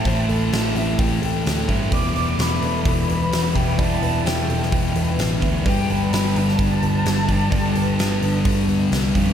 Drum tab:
HH |o-o-o-o-o-o-o-o-|o-o-o-o-o-o-o-o-|o-o-o-o-o-o-o-o-|o-o-o-o-o-o-o-o-|
SD |----o-------o---|----o-------o---|----o--o----o---|----o--o----o---|
BD |o-------o-----o-|o-------o-----o-|o-------o-----o-|o-------o-----o-|

HH |o-o-o-o-o-o-o-o-|
SD |----o-------o---|
BD |o-------o-----o-|